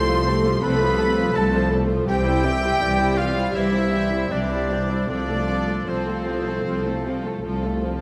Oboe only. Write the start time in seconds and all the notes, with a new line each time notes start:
Already playing: C5
0.63 B4
1.35 A4
2.08 G4
3.17 F4
3.56 E4
4.32 D4
5.10 D4
5.88 C4